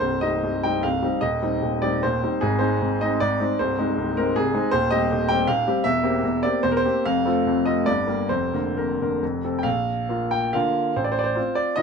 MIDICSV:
0, 0, Header, 1, 2, 480
1, 0, Start_track
1, 0, Key_signature, -3, "minor"
1, 0, Tempo, 416956
1, 13, Time_signature, 3, 2, 24, 8
1, 972, Tempo, 395257
1, 2412, Tempo, 382409
1, 5787, Key_signature, -2, "major"
1, 8172, Tempo, 418118
1, 10092, Tempo, 450113
1, 12492, Tempo, 412655
1, 13982, End_track
2, 0, Start_track
2, 0, Title_t, "Grand piano"
2, 0, Program_c, 0, 0
2, 0, Note_on_c, 0, 72, 74
2, 2, Note_on_c, 0, 36, 45
2, 10, Note_on_c, 0, 24, 46
2, 239, Note_off_c, 0, 36, 0
2, 241, Note_off_c, 0, 72, 0
2, 243, Note_off_c, 0, 24, 0
2, 243, Note_on_c, 0, 75, 67
2, 251, Note_on_c, 0, 55, 32
2, 256, Note_on_c, 0, 60, 38
2, 257, Note_on_c, 0, 63, 35
2, 260, Control_c, 0, 64, 127
2, 473, Note_off_c, 0, 55, 0
2, 476, Note_off_c, 0, 60, 0
2, 476, Note_off_c, 0, 63, 0
2, 490, Note_on_c, 0, 24, 41
2, 495, Note_on_c, 0, 36, 40
2, 731, Note_off_c, 0, 24, 0
2, 731, Note_on_c, 0, 79, 65
2, 734, Note_off_c, 0, 36, 0
2, 738, Note_off_c, 0, 75, 0
2, 747, Note_on_c, 0, 63, 35
2, 748, Note_on_c, 0, 55, 33
2, 749, Note_on_c, 0, 60, 36
2, 953, Note_off_c, 0, 55, 0
2, 953, Note_off_c, 0, 63, 0
2, 954, Note_off_c, 0, 60, 0
2, 955, Note_on_c, 0, 77, 69
2, 961, Note_on_c, 0, 24, 41
2, 967, Note_off_c, 0, 79, 0
2, 968, Note_on_c, 0, 36, 45
2, 983, Control_c, 0, 64, 0
2, 1188, Note_on_c, 0, 55, 39
2, 1191, Note_off_c, 0, 24, 0
2, 1195, Note_off_c, 0, 36, 0
2, 1195, Note_on_c, 0, 60, 33
2, 1205, Note_on_c, 0, 63, 35
2, 1398, Note_off_c, 0, 55, 0
2, 1402, Note_off_c, 0, 60, 0
2, 1408, Note_off_c, 0, 63, 0
2, 1415, Note_on_c, 0, 75, 68
2, 1417, Note_on_c, 0, 27, 47
2, 1420, Note_off_c, 0, 77, 0
2, 1427, Note_on_c, 0, 39, 51
2, 1634, Control_c, 0, 64, 127
2, 1648, Note_off_c, 0, 27, 0
2, 1654, Note_off_c, 0, 39, 0
2, 1670, Note_on_c, 0, 60, 36
2, 1672, Note_on_c, 0, 55, 38
2, 1682, Note_on_c, 0, 63, 39
2, 1892, Note_off_c, 0, 60, 0
2, 1893, Note_off_c, 0, 55, 0
2, 1899, Note_off_c, 0, 63, 0
2, 1915, Note_on_c, 0, 39, 40
2, 1916, Note_on_c, 0, 27, 43
2, 2154, Note_on_c, 0, 74, 66
2, 2159, Note_on_c, 0, 55, 32
2, 2161, Note_off_c, 0, 75, 0
2, 2162, Note_off_c, 0, 39, 0
2, 2163, Note_off_c, 0, 27, 0
2, 2164, Note_on_c, 0, 60, 34
2, 2175, Note_on_c, 0, 63, 37
2, 2383, Note_off_c, 0, 55, 0
2, 2386, Note_off_c, 0, 60, 0
2, 2392, Note_off_c, 0, 63, 0
2, 2406, Note_off_c, 0, 74, 0
2, 2410, Note_on_c, 0, 72, 73
2, 2426, Note_on_c, 0, 39, 48
2, 2428, Note_on_c, 0, 27, 45
2, 2429, Control_c, 0, 64, 0
2, 2653, Note_off_c, 0, 39, 0
2, 2654, Note_off_c, 0, 27, 0
2, 2665, Note_on_c, 0, 55, 37
2, 2667, Note_on_c, 0, 60, 40
2, 2672, Note_on_c, 0, 63, 39
2, 2868, Note_off_c, 0, 55, 0
2, 2869, Note_off_c, 0, 60, 0
2, 2872, Note_off_c, 0, 63, 0
2, 2883, Note_off_c, 0, 72, 0
2, 2888, Note_on_c, 0, 68, 67
2, 2900, Note_on_c, 0, 44, 49
2, 2906, Note_on_c, 0, 32, 51
2, 3089, Control_c, 0, 64, 127
2, 3111, Note_on_c, 0, 72, 68
2, 3122, Note_off_c, 0, 44, 0
2, 3123, Note_off_c, 0, 68, 0
2, 3125, Note_off_c, 0, 32, 0
2, 3125, Note_on_c, 0, 60, 36
2, 3131, Note_on_c, 0, 56, 35
2, 3136, Note_on_c, 0, 63, 39
2, 3351, Note_off_c, 0, 60, 0
2, 3354, Note_off_c, 0, 56, 0
2, 3357, Note_off_c, 0, 63, 0
2, 3396, Note_on_c, 0, 32, 42
2, 3400, Note_on_c, 0, 44, 45
2, 3621, Note_off_c, 0, 72, 0
2, 3631, Note_off_c, 0, 32, 0
2, 3633, Note_off_c, 0, 44, 0
2, 3643, Note_on_c, 0, 75, 69
2, 3654, Note_on_c, 0, 56, 36
2, 3655, Note_on_c, 0, 60, 36
2, 3669, Note_on_c, 0, 63, 42
2, 3859, Note_off_c, 0, 56, 0
2, 3860, Note_off_c, 0, 60, 0
2, 3867, Note_off_c, 0, 63, 0
2, 3876, Note_off_c, 0, 75, 0
2, 3882, Control_c, 0, 64, 0
2, 3885, Note_on_c, 0, 74, 77
2, 3891, Note_on_c, 0, 44, 51
2, 3894, Note_on_c, 0, 32, 46
2, 4110, Note_off_c, 0, 44, 0
2, 4111, Note_off_c, 0, 32, 0
2, 4129, Note_on_c, 0, 60, 37
2, 4131, Note_on_c, 0, 56, 39
2, 4135, Note_on_c, 0, 63, 43
2, 4330, Note_off_c, 0, 60, 0
2, 4331, Note_off_c, 0, 56, 0
2, 4333, Note_off_c, 0, 63, 0
2, 4349, Note_off_c, 0, 74, 0
2, 4373, Note_on_c, 0, 72, 76
2, 4382, Note_on_c, 0, 24, 48
2, 4386, Note_on_c, 0, 36, 55
2, 4552, Control_c, 0, 64, 127
2, 4597, Note_off_c, 0, 24, 0
2, 4599, Note_off_c, 0, 36, 0
2, 4614, Note_on_c, 0, 56, 40
2, 4616, Note_on_c, 0, 60, 38
2, 4622, Note_on_c, 0, 63, 44
2, 4829, Note_off_c, 0, 56, 0
2, 4830, Note_off_c, 0, 60, 0
2, 4834, Note_off_c, 0, 63, 0
2, 4847, Note_on_c, 0, 24, 46
2, 4854, Note_on_c, 0, 36, 46
2, 5083, Note_off_c, 0, 24, 0
2, 5087, Note_off_c, 0, 36, 0
2, 5099, Note_on_c, 0, 70, 68
2, 5102, Note_off_c, 0, 72, 0
2, 5106, Note_on_c, 0, 56, 41
2, 5109, Note_on_c, 0, 60, 42
2, 5122, Note_on_c, 0, 63, 43
2, 5310, Note_off_c, 0, 56, 0
2, 5311, Note_off_c, 0, 60, 0
2, 5319, Note_off_c, 0, 63, 0
2, 5329, Note_off_c, 0, 70, 0
2, 5334, Note_on_c, 0, 68, 77
2, 5337, Control_c, 0, 64, 0
2, 5341, Note_on_c, 0, 24, 51
2, 5342, Note_on_c, 0, 36, 51
2, 5558, Note_off_c, 0, 24, 0
2, 5558, Note_off_c, 0, 36, 0
2, 5560, Note_on_c, 0, 56, 43
2, 5564, Note_on_c, 0, 60, 44
2, 5567, Note_on_c, 0, 63, 46
2, 5766, Note_off_c, 0, 56, 0
2, 5768, Note_off_c, 0, 60, 0
2, 5770, Note_off_c, 0, 63, 0
2, 5781, Note_on_c, 0, 72, 90
2, 5792, Note_off_c, 0, 68, 0
2, 5796, Note_on_c, 0, 39, 58
2, 5803, Note_on_c, 0, 27, 53
2, 6018, Note_off_c, 0, 39, 0
2, 6018, Note_off_c, 0, 72, 0
2, 6020, Note_on_c, 0, 75, 76
2, 6022, Note_off_c, 0, 27, 0
2, 6022, Control_c, 0, 64, 127
2, 6031, Note_on_c, 0, 55, 41
2, 6034, Note_on_c, 0, 60, 42
2, 6037, Note_on_c, 0, 67, 42
2, 6244, Note_off_c, 0, 55, 0
2, 6246, Note_off_c, 0, 60, 0
2, 6248, Note_off_c, 0, 67, 0
2, 6277, Note_on_c, 0, 39, 47
2, 6282, Note_on_c, 0, 27, 50
2, 6498, Note_on_c, 0, 79, 85
2, 6502, Note_off_c, 0, 39, 0
2, 6502, Note_off_c, 0, 75, 0
2, 6505, Note_off_c, 0, 27, 0
2, 6510, Note_on_c, 0, 55, 44
2, 6517, Note_on_c, 0, 67, 44
2, 6522, Note_on_c, 0, 60, 42
2, 6714, Note_off_c, 0, 55, 0
2, 6718, Note_off_c, 0, 67, 0
2, 6720, Note_off_c, 0, 60, 0
2, 6730, Note_off_c, 0, 79, 0
2, 6735, Note_on_c, 0, 77, 86
2, 6741, Note_on_c, 0, 39, 52
2, 6742, Note_on_c, 0, 27, 55
2, 6743, Control_c, 0, 64, 0
2, 6958, Note_off_c, 0, 27, 0
2, 6958, Note_off_c, 0, 39, 0
2, 6987, Note_on_c, 0, 55, 44
2, 6987, Note_on_c, 0, 67, 47
2, 6992, Note_on_c, 0, 60, 44
2, 7180, Note_off_c, 0, 55, 0
2, 7180, Note_off_c, 0, 67, 0
2, 7183, Note_off_c, 0, 60, 0
2, 7190, Note_off_c, 0, 77, 0
2, 7193, Note_on_c, 0, 76, 90
2, 7212, Note_on_c, 0, 40, 57
2, 7213, Note_on_c, 0, 28, 58
2, 7418, Control_c, 0, 64, 127
2, 7430, Note_off_c, 0, 40, 0
2, 7431, Note_off_c, 0, 28, 0
2, 7436, Note_on_c, 0, 58, 45
2, 7438, Note_on_c, 0, 60, 41
2, 7440, Note_on_c, 0, 67, 47
2, 7657, Note_off_c, 0, 58, 0
2, 7658, Note_off_c, 0, 60, 0
2, 7659, Note_off_c, 0, 67, 0
2, 7690, Note_on_c, 0, 40, 49
2, 7691, Control_c, 0, 64, 0
2, 7694, Note_on_c, 0, 28, 48
2, 7926, Note_off_c, 0, 40, 0
2, 7928, Note_off_c, 0, 28, 0
2, 7929, Note_off_c, 0, 76, 0
2, 7932, Note_on_c, 0, 74, 71
2, 7944, Note_on_c, 0, 58, 41
2, 7953, Note_on_c, 0, 60, 39
2, 7960, Note_on_c, 0, 67, 44
2, 8158, Note_off_c, 0, 58, 0
2, 8163, Note_off_c, 0, 60, 0
2, 8168, Note_off_c, 0, 67, 0
2, 8176, Note_off_c, 0, 74, 0
2, 8184, Note_on_c, 0, 72, 81
2, 8187, Note_on_c, 0, 40, 55
2, 8196, Note_on_c, 0, 28, 50
2, 8258, Note_off_c, 0, 72, 0
2, 8284, Note_on_c, 0, 70, 73
2, 8343, Note_on_c, 0, 72, 83
2, 8351, Note_off_c, 0, 70, 0
2, 8415, Note_off_c, 0, 40, 0
2, 8420, Note_off_c, 0, 28, 0
2, 8438, Note_on_c, 0, 58, 44
2, 8443, Note_on_c, 0, 60, 45
2, 8443, Note_on_c, 0, 67, 47
2, 8645, Note_off_c, 0, 58, 0
2, 8648, Note_off_c, 0, 60, 0
2, 8648, Note_off_c, 0, 67, 0
2, 8661, Note_off_c, 0, 72, 0
2, 8673, Note_on_c, 0, 77, 81
2, 8679, Note_on_c, 0, 29, 47
2, 8680, Note_on_c, 0, 41, 58
2, 8889, Note_off_c, 0, 29, 0
2, 8890, Note_off_c, 0, 41, 0
2, 8897, Control_c, 0, 64, 127
2, 8898, Note_on_c, 0, 57, 42
2, 8902, Note_on_c, 0, 60, 40
2, 8914, Note_on_c, 0, 65, 42
2, 9103, Note_off_c, 0, 57, 0
2, 9105, Note_off_c, 0, 60, 0
2, 9112, Note_off_c, 0, 65, 0
2, 9144, Note_on_c, 0, 29, 48
2, 9144, Note_on_c, 0, 41, 46
2, 9360, Note_on_c, 0, 57, 37
2, 9361, Note_on_c, 0, 75, 67
2, 9365, Note_off_c, 0, 29, 0
2, 9365, Note_off_c, 0, 41, 0
2, 9367, Note_off_c, 0, 77, 0
2, 9370, Note_on_c, 0, 65, 43
2, 9371, Note_on_c, 0, 60, 33
2, 9575, Note_off_c, 0, 57, 0
2, 9580, Note_off_c, 0, 65, 0
2, 9581, Note_off_c, 0, 60, 0
2, 9596, Note_on_c, 0, 74, 73
2, 9599, Note_off_c, 0, 75, 0
2, 9600, Note_on_c, 0, 43, 47
2, 9601, Note_on_c, 0, 31, 46
2, 9615, Control_c, 0, 64, 0
2, 9835, Note_off_c, 0, 43, 0
2, 9836, Note_off_c, 0, 31, 0
2, 9838, Note_on_c, 0, 58, 36
2, 9845, Control_c, 0, 64, 127
2, 9845, Note_on_c, 0, 55, 36
2, 9852, Note_on_c, 0, 70, 36
2, 10066, Note_off_c, 0, 58, 0
2, 10069, Note_off_c, 0, 55, 0
2, 10073, Note_off_c, 0, 70, 0
2, 10092, Note_off_c, 0, 74, 0
2, 10092, Note_on_c, 0, 72, 68
2, 10101, Control_c, 0, 64, 0
2, 10101, Note_on_c, 0, 41, 46
2, 10102, Note_on_c, 0, 29, 41
2, 10333, Note_off_c, 0, 41, 0
2, 10334, Note_off_c, 0, 29, 0
2, 10341, Control_c, 0, 64, 127
2, 10350, Note_on_c, 0, 50, 35
2, 10350, Note_on_c, 0, 58, 33
2, 10358, Note_on_c, 0, 70, 37
2, 10575, Note_off_c, 0, 50, 0
2, 10575, Note_off_c, 0, 58, 0
2, 10579, Note_off_c, 0, 70, 0
2, 10593, Note_off_c, 0, 72, 0
2, 10604, Note_on_c, 0, 70, 48
2, 10607, Note_on_c, 0, 41, 39
2, 10618, Note_on_c, 0, 29, 39
2, 10845, Note_off_c, 0, 41, 0
2, 10851, Note_off_c, 0, 29, 0
2, 10855, Note_off_c, 0, 70, 0
2, 10856, Note_on_c, 0, 50, 34
2, 10863, Note_on_c, 0, 58, 33
2, 10871, Note_on_c, 0, 70, 35
2, 11061, Note_off_c, 0, 50, 0
2, 11065, Note_off_c, 0, 58, 0
2, 11069, Note_off_c, 0, 70, 0
2, 11084, Note_on_c, 0, 41, 44
2, 11089, Note_on_c, 0, 29, 41
2, 11094, Control_c, 0, 64, 0
2, 11270, Control_c, 0, 64, 127
2, 11304, Note_off_c, 0, 41, 0
2, 11306, Note_off_c, 0, 29, 0
2, 11320, Note_on_c, 0, 48, 31
2, 11323, Note_on_c, 0, 60, 33
2, 11325, Note_on_c, 0, 69, 33
2, 11472, Note_on_c, 0, 79, 49
2, 11520, Note_on_c, 0, 77, 75
2, 11521, Note_off_c, 0, 48, 0
2, 11523, Note_off_c, 0, 60, 0
2, 11524, Note_off_c, 0, 69, 0
2, 11531, Note_on_c, 0, 34, 45
2, 11543, Note_off_c, 0, 79, 0
2, 11550, Control_c, 0, 64, 0
2, 11772, Control_c, 0, 64, 127
2, 11992, Note_off_c, 0, 34, 0
2, 12008, Note_on_c, 0, 58, 38
2, 12016, Note_on_c, 0, 65, 40
2, 12244, Note_on_c, 0, 79, 64
2, 12246, Note_off_c, 0, 77, 0
2, 12450, Note_off_c, 0, 58, 0
2, 12454, Note_off_c, 0, 65, 0
2, 12479, Note_on_c, 0, 77, 72
2, 12487, Note_off_c, 0, 79, 0
2, 12493, Note_on_c, 0, 50, 47
2, 12495, Note_on_c, 0, 65, 49
2, 12499, Note_on_c, 0, 58, 46
2, 12507, Control_c, 0, 64, 0
2, 12928, Note_off_c, 0, 50, 0
2, 12930, Note_off_c, 0, 65, 0
2, 12932, Note_off_c, 0, 58, 0
2, 12967, Note_off_c, 0, 77, 0
2, 12980, Note_on_c, 0, 33, 48
2, 12982, Note_on_c, 0, 72, 58
2, 13069, Note_off_c, 0, 72, 0
2, 13075, Note_on_c, 0, 74, 56
2, 13160, Note_on_c, 0, 72, 65
2, 13162, Note_off_c, 0, 74, 0
2, 13192, Control_c, 0, 64, 127
2, 13243, Note_on_c, 0, 74, 59
2, 13253, Note_off_c, 0, 72, 0
2, 13303, Note_on_c, 0, 72, 69
2, 13343, Note_off_c, 0, 74, 0
2, 13434, Note_on_c, 0, 65, 40
2, 13439, Note_on_c, 0, 60, 39
2, 13444, Note_off_c, 0, 33, 0
2, 13474, Control_c, 0, 64, 0
2, 13668, Note_on_c, 0, 74, 73
2, 13680, Note_off_c, 0, 72, 0
2, 13878, Note_off_c, 0, 65, 0
2, 13880, Note_off_c, 0, 60, 0
2, 13904, Note_on_c, 0, 75, 81
2, 13916, Note_on_c, 0, 60, 46
2, 13917, Note_on_c, 0, 51, 45
2, 13918, Note_off_c, 0, 74, 0
2, 13926, Note_on_c, 0, 65, 51
2, 13982, Note_off_c, 0, 51, 0
2, 13982, Note_off_c, 0, 60, 0
2, 13982, Note_off_c, 0, 65, 0
2, 13982, Note_off_c, 0, 75, 0
2, 13982, End_track
0, 0, End_of_file